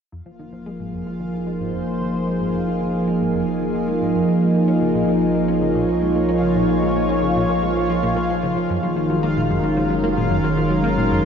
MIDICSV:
0, 0, Header, 1, 5, 480
1, 0, Start_track
1, 0, Tempo, 535714
1, 113, Time_signature, 4, 2, 24, 8
1, 10080, End_track
2, 0, Start_track
2, 0, Title_t, "Synth texture"
2, 0, Program_c, 0, 99
2, 112, Note_on_c, 0, 65, 67
2, 112, Note_on_c, 0, 77, 72
2, 10080, Note_off_c, 0, 65, 0
2, 10080, Note_off_c, 0, 77, 0
2, 10080, End_track
3, 0, Start_track
3, 0, Title_t, "Analog synth pad"
3, 0, Program_c, 1, 89
3, 113, Note_on_c, 1, 53, 74
3, 201, Note_on_c, 1, 58, 81
3, 487, Note_on_c, 1, 68, 83
3, 959, Note_on_c, 1, 63, 76
3, 1071, Note_on_c, 1, 72, 81
3, 3954, Note_off_c, 1, 72, 0
3, 4522, Note_on_c, 1, 73, 88
3, 7793, Note_off_c, 1, 53, 0
3, 7793, Note_on_c, 1, 51, 89
3, 7934, Note_on_c, 1, 56, 85
3, 8097, Note_on_c, 1, 54, 85
3, 8360, Note_on_c, 1, 70, 80
3, 8418, Note_on_c, 1, 61, 83
3, 8761, Note_off_c, 1, 73, 0
3, 9005, Note_off_c, 1, 63, 0
3, 9045, Note_off_c, 1, 68, 0
3, 9330, Note_off_c, 1, 58, 0
3, 10080, Note_off_c, 1, 51, 0
3, 10080, Note_off_c, 1, 54, 0
3, 10080, Note_off_c, 1, 56, 0
3, 10080, Note_off_c, 1, 61, 0
3, 10080, Note_off_c, 1, 70, 0
3, 10080, End_track
4, 0, Start_track
4, 0, Title_t, "Analog synth bass"
4, 0, Program_c, 2, 38
4, 112, Note_on_c, 2, 41, 74
4, 192, Note_off_c, 2, 41, 0
4, 233, Note_on_c, 2, 53, 70
4, 281, Note_off_c, 2, 53, 0
4, 352, Note_on_c, 2, 51, 70
4, 432, Note_off_c, 2, 51, 0
4, 472, Note_on_c, 2, 53, 70
4, 586, Note_off_c, 2, 53, 0
4, 593, Note_on_c, 2, 56, 96
4, 641, Note_off_c, 2, 56, 0
4, 712, Note_on_c, 2, 44, 70
4, 827, Note_off_c, 2, 44, 0
4, 833, Note_on_c, 2, 41, 68
4, 912, Note_off_c, 2, 41, 0
4, 954, Note_on_c, 2, 53, 69
4, 1001, Note_off_c, 2, 53, 0
4, 1074, Note_on_c, 2, 51, 76
4, 1153, Note_off_c, 2, 51, 0
4, 1194, Note_on_c, 2, 53, 69
4, 1308, Note_off_c, 2, 53, 0
4, 1314, Note_on_c, 2, 56, 92
4, 1361, Note_off_c, 2, 56, 0
4, 1434, Note_on_c, 2, 44, 69
4, 1548, Note_off_c, 2, 44, 0
4, 1555, Note_on_c, 2, 41, 76
4, 1633, Note_off_c, 2, 41, 0
4, 1674, Note_on_c, 2, 53, 70
4, 1721, Note_off_c, 2, 53, 0
4, 1795, Note_on_c, 2, 51, 71
4, 1873, Note_off_c, 2, 51, 0
4, 1915, Note_on_c, 2, 53, 68
4, 2028, Note_off_c, 2, 53, 0
4, 2036, Note_on_c, 2, 56, 85
4, 2082, Note_off_c, 2, 56, 0
4, 2153, Note_on_c, 2, 44, 70
4, 2267, Note_off_c, 2, 44, 0
4, 2274, Note_on_c, 2, 41, 72
4, 2353, Note_off_c, 2, 41, 0
4, 2393, Note_on_c, 2, 53, 73
4, 2441, Note_off_c, 2, 53, 0
4, 2515, Note_on_c, 2, 51, 79
4, 2593, Note_off_c, 2, 51, 0
4, 2634, Note_on_c, 2, 53, 69
4, 2748, Note_off_c, 2, 53, 0
4, 2755, Note_on_c, 2, 56, 95
4, 2802, Note_off_c, 2, 56, 0
4, 2877, Note_on_c, 2, 44, 67
4, 2989, Note_off_c, 2, 44, 0
4, 2995, Note_on_c, 2, 41, 80
4, 3073, Note_off_c, 2, 41, 0
4, 3116, Note_on_c, 2, 53, 68
4, 3162, Note_off_c, 2, 53, 0
4, 3235, Note_on_c, 2, 51, 70
4, 3313, Note_off_c, 2, 51, 0
4, 3355, Note_on_c, 2, 53, 69
4, 3468, Note_off_c, 2, 53, 0
4, 3475, Note_on_c, 2, 56, 87
4, 3522, Note_off_c, 2, 56, 0
4, 3595, Note_on_c, 2, 44, 70
4, 3708, Note_off_c, 2, 44, 0
4, 3716, Note_on_c, 2, 41, 71
4, 3794, Note_off_c, 2, 41, 0
4, 3834, Note_on_c, 2, 53, 71
4, 3881, Note_off_c, 2, 53, 0
4, 3954, Note_on_c, 2, 56, 69
4, 4033, Note_off_c, 2, 56, 0
4, 4073, Note_on_c, 2, 58, 72
4, 4187, Note_off_c, 2, 58, 0
4, 4192, Note_on_c, 2, 61, 92
4, 4240, Note_off_c, 2, 61, 0
4, 4313, Note_on_c, 2, 49, 69
4, 4427, Note_off_c, 2, 49, 0
4, 4433, Note_on_c, 2, 46, 75
4, 4512, Note_off_c, 2, 46, 0
4, 4554, Note_on_c, 2, 58, 70
4, 4601, Note_off_c, 2, 58, 0
4, 4674, Note_on_c, 2, 56, 70
4, 4753, Note_off_c, 2, 56, 0
4, 4793, Note_on_c, 2, 58, 69
4, 4907, Note_off_c, 2, 58, 0
4, 4913, Note_on_c, 2, 61, 95
4, 4961, Note_off_c, 2, 61, 0
4, 5032, Note_on_c, 2, 49, 71
4, 5147, Note_off_c, 2, 49, 0
4, 5153, Note_on_c, 2, 46, 72
4, 5233, Note_off_c, 2, 46, 0
4, 5273, Note_on_c, 2, 58, 68
4, 5321, Note_off_c, 2, 58, 0
4, 5394, Note_on_c, 2, 56, 75
4, 5473, Note_off_c, 2, 56, 0
4, 5514, Note_on_c, 2, 58, 72
4, 5628, Note_off_c, 2, 58, 0
4, 5633, Note_on_c, 2, 61, 97
4, 5681, Note_off_c, 2, 61, 0
4, 5754, Note_on_c, 2, 49, 69
4, 5868, Note_off_c, 2, 49, 0
4, 5875, Note_on_c, 2, 46, 70
4, 5953, Note_off_c, 2, 46, 0
4, 5995, Note_on_c, 2, 58, 68
4, 6042, Note_off_c, 2, 58, 0
4, 6115, Note_on_c, 2, 56, 72
4, 6193, Note_off_c, 2, 56, 0
4, 6235, Note_on_c, 2, 58, 70
4, 6348, Note_off_c, 2, 58, 0
4, 6354, Note_on_c, 2, 61, 95
4, 6401, Note_off_c, 2, 61, 0
4, 6475, Note_on_c, 2, 49, 68
4, 6588, Note_off_c, 2, 49, 0
4, 6593, Note_on_c, 2, 46, 73
4, 6673, Note_off_c, 2, 46, 0
4, 6713, Note_on_c, 2, 58, 71
4, 6761, Note_off_c, 2, 58, 0
4, 6835, Note_on_c, 2, 56, 75
4, 6913, Note_off_c, 2, 56, 0
4, 6955, Note_on_c, 2, 58, 74
4, 7068, Note_off_c, 2, 58, 0
4, 7074, Note_on_c, 2, 53, 95
4, 7153, Note_off_c, 2, 53, 0
4, 7194, Note_on_c, 2, 46, 93
4, 7307, Note_off_c, 2, 46, 0
4, 7315, Note_on_c, 2, 58, 75
4, 7428, Note_off_c, 2, 58, 0
4, 7434, Note_on_c, 2, 53, 69
4, 7548, Note_off_c, 2, 53, 0
4, 7554, Note_on_c, 2, 49, 72
4, 7668, Note_off_c, 2, 49, 0
4, 7675, Note_on_c, 2, 53, 69
4, 7753, Note_off_c, 2, 53, 0
4, 7793, Note_on_c, 2, 42, 72
4, 7873, Note_off_c, 2, 42, 0
4, 7913, Note_on_c, 2, 54, 73
4, 7961, Note_off_c, 2, 54, 0
4, 8032, Note_on_c, 2, 53, 72
4, 8112, Note_off_c, 2, 53, 0
4, 8152, Note_on_c, 2, 54, 70
4, 8266, Note_off_c, 2, 54, 0
4, 8271, Note_on_c, 2, 58, 96
4, 8319, Note_off_c, 2, 58, 0
4, 8393, Note_on_c, 2, 46, 67
4, 8507, Note_off_c, 2, 46, 0
4, 8513, Note_on_c, 2, 42, 71
4, 8593, Note_off_c, 2, 42, 0
4, 8632, Note_on_c, 2, 54, 68
4, 8680, Note_off_c, 2, 54, 0
4, 8753, Note_on_c, 2, 53, 81
4, 8832, Note_off_c, 2, 53, 0
4, 8871, Note_on_c, 2, 54, 71
4, 8986, Note_off_c, 2, 54, 0
4, 8993, Note_on_c, 2, 58, 97
4, 9041, Note_off_c, 2, 58, 0
4, 9113, Note_on_c, 2, 46, 71
4, 9227, Note_off_c, 2, 46, 0
4, 9231, Note_on_c, 2, 42, 76
4, 9312, Note_off_c, 2, 42, 0
4, 9352, Note_on_c, 2, 54, 71
4, 9400, Note_off_c, 2, 54, 0
4, 9471, Note_on_c, 2, 53, 70
4, 9552, Note_off_c, 2, 53, 0
4, 9590, Note_on_c, 2, 54, 73
4, 9706, Note_off_c, 2, 54, 0
4, 9711, Note_on_c, 2, 58, 95
4, 9760, Note_off_c, 2, 58, 0
4, 9832, Note_on_c, 2, 46, 71
4, 9946, Note_off_c, 2, 46, 0
4, 9953, Note_on_c, 2, 42, 72
4, 10032, Note_off_c, 2, 42, 0
4, 10080, End_track
5, 0, Start_track
5, 0, Title_t, "Sub bass"
5, 0, Program_c, 3, 38
5, 111, Note_on_c, 3, 29, 78
5, 3928, Note_off_c, 3, 29, 0
5, 3950, Note_on_c, 3, 34, 78
5, 7768, Note_off_c, 3, 34, 0
5, 7792, Note_on_c, 3, 30, 83
5, 10080, Note_off_c, 3, 30, 0
5, 10080, End_track
0, 0, End_of_file